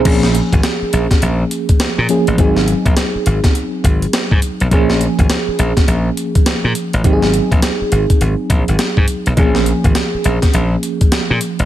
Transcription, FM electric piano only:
0.00 0.23 C4 medium
0.05 2.05 F3 medium
0.05 2.05 A#3 medium
0.05 2.06 C#4 medium
0.05 2.06 G#4 medium
2.09 2.38 F3 medium
2.09 2.38 A#3 medium
2.09 2.39 C#4 soft
2.09 2.39 G#4 medium
2.38 4.67 F#3 medium
2.38 4.67 C4 medium
2.38 4.68 D#4 medium
2.38 4.68 G#4 medium
4.71 7.00 F3 medium
4.71 7.01 A#3 medium
4.71 7.01 C#4 medium
4.71 7.02 G#4 medium
7.04 9.33 F#3 medium
7.04 9.34 C4 medium
7.04 9.34 D#4 medium
7.04 7.13 G4 medium
7.13 9.38 G#4 medium
9.37 11.65 F3 medium
9.37 11.65 A#3 medium
9.37 11.65 C#4 medium
9.37 11.65 G#4 medium

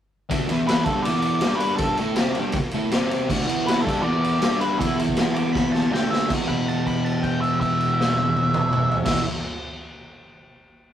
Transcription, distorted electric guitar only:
0.29 0.47 D3 loud
0.29 0.49 A3 medium
0.29 0.49 D4 loud
0.50 0.86 E3 medium
0.50 0.86 B3 medium
0.50 0.86 E4 loud
0.88 1.05 G3 medium
0.88 1.05 D4 loud
0.88 1.06 G4 loud
1.07 1.43 E3 loud
1.07 1.43 B3 loud
1.07 1.43 E4 loud
1.45 1.99 G3 medium
1.45 2.00 D4 medium
1.45 2.00 G4 loud
2.00 2.17 A3 loud
2.00 2.17 E4 loud
2.00 2.18 A4 loud
2.18 2.36 C4 medium
2.18 2.36 G4 loud
2.18 2.37 C5 loud
2.39 2.55 G3 medium
2.39 2.55 D4 loud
2.39 2.56 G4 loud
2.59 muted distorted electric guitar stroke medium
2.74 2.92 A3 medium
2.74 2.92 E4 loud
2.74 2.93 A4 medium
2.94 3.30 C4 medium
2.94 3.30 G4 loud
2.94 3.30 C5 loud
3.29 3.46 D3 loud
3.29 3.47 A3 medium
3.29 3.48 D4 loud
3.46 3.84 E3 loud
3.46 3.85 B3 medium
3.46 3.85 E4 loud
3.85 4.03 G3 medium
3.85 4.03 D4 loud
3.85 4.05 G4 loud
4.02 4.40 E3 loud
4.02 4.40 B3 loud
4.02 4.41 E4 loud
4.40 4.78 G3 loud
4.40 4.79 D4 loud
4.40 4.79 G4 loud
4.79 5.90 E3 loud
4.79 5.91 B3 loud
4.79 5.92 E4 loud
5.90 6.28 D3 medium
5.90 6.29 A3 medium
5.90 6.29 D4 loud
6.28 9.04 E2 loud
6.28 9.06 B2 loud
6.28 9.08 E3 loud
9.04 9.21 E2 medium
9.04 9.23 B2 loud
9.04 9.23 E3 loud

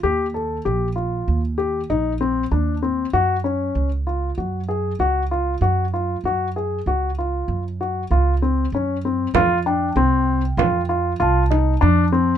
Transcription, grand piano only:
0.03 0.25 G4 medium
0.34 0.56 A4 medium
0.65 0.87 G4 medium
0.96 1.40 F4 medium
1.58 1.80 G4 medium
1.90 2.12 D#4 medium
2.21 2.43 C4 medium
2.52 2.74 D4 medium
2.82 3.05 C4 medium
3.13 3.36 F#4 medium
3.44 3.89 C#4 medium
4.07 4.29 F4 medium
4.38 4.60 F#4 soft
4.68 4.91 G#4 medium
5.00 5.22 F#4 medium
5.31 5.53 F4 medium
5.62 5.84 F#4 medium
5.94 6.16 F4 medium
6.25 6.47 F#4 medium
6.56 6.78 G#4 medium
6.87 7.09 F#4 medium
7.18 7.62 F4 medium
7.81 8.02 F#4 medium
8.11 8.33 F4 medium
8.42 8.64 C4 medium
8.75 8.96 C#4 medium
9.05 9.27 C4 medium
9.35 9.57 F4 medium
9.66 9.88 D4 medium
9.97 10.41 C4 medium
10.58 10.80 F4 medium
10.89 11.11 F4 medium
11.20 11.42 F4 medium
11.51 11.73 D#4 medium
11.81 12.04 D4 medium
12.12 12.35 C4 medium

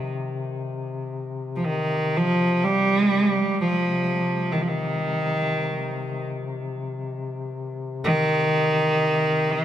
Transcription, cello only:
0.00 0.10 D#3 medium
1.56 1.66 F3 soft
1.65 2.18 D#3 medium
2.17 2.65 F3 medium
2.64 3.60 G3 medium
3.61 4.54 F3 medium
4.52 4.63 D#3 medium
4.61 4.69 F3 soft
4.68 6.27 D#3 medium
8.05 9.53 D#3 medium
9.51 9.65 E3 medium

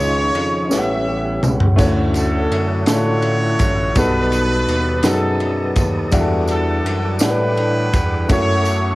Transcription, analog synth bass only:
0.00 0.31 C#2 loud
0.35 0.68 F2 medium
0.71 1.39 A1 loud
1.44 1.77 C#2 medium
1.78 2.47 D2 loud
2.51 2.85 F#2 medium
2.87 3.56 A2 loud
3.59 3.93 A1 medium
3.96 4.64 B1 loud
4.68 5.01 D#2 medium
5.04 5.73 F#2 medium
5.76 6.10 D#2 medium
6.12 6.81 E2 loud
6.85 7.18 F#2 medium
7.21 7.89 A2 loud
7.93 8.27 E2 medium
8.30 8.95 F#2 loud

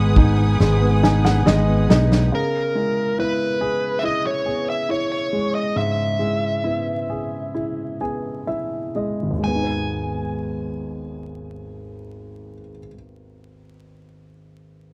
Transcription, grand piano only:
0.00 0.60 G#3 medium
0.00 0.16 D#4 soft
0.17 1.02 D#4 medium
0.60 1.44 G#3 medium
1.03 1.88 D#4 medium
1.03 1.23 G#5 medium
1.25 1.44 F#5 medium
1.46 2.29 G#3 medium
1.46 1.86 D#5 medium
1.90 2.31 D#4 medium
1.90 2.29 D#5 medium
2.32 5.72 C#3 medium
2.75 4.42 G#3 soft
3.18 4.02 E4 soft
3.61 4.44 G#4 soft
4.03 4.88 E4 soft
4.46 6.16 G#4 soft
4.89 6.60 E4 soft
5.33 6.18 G#3 soft
5.76 9.39 G#2 soft
6.19 7.96 G#3 soft
6.64 7.53 E4 soft
7.10 7.99 G#4 soft
7.54 8.46 E4 soft
8.01 9.39 G#4 soft
8.01 8.44 G#5 soft
8.47 9.40 E4 soft
8.47 8.91 E5 soft
8.96 9.38 G#3 soft
8.96 9.40 D#5 soft
9.22 12.53 G#1 soft
9.31 12.61 D#2 soft
9.39 12.69 G#3 soft
9.47 12.77 B3 soft
9.55 12.86 D#4 soft
9.64 12.94 B4 soft

